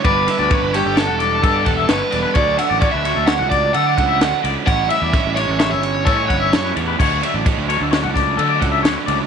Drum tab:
CC |----------|----------|----------|x---------|
RD |xxxxxxxxxx|xxxxxxxxxx|xxxxxxxxxx|-xxxxxxxxx|
SD |-o--o---o-|----o---o-|--ooo---o-|----oo--o-|
BD |o-o---oo--|o-o--o-o--|o-o---oo--|o-o--o-o--|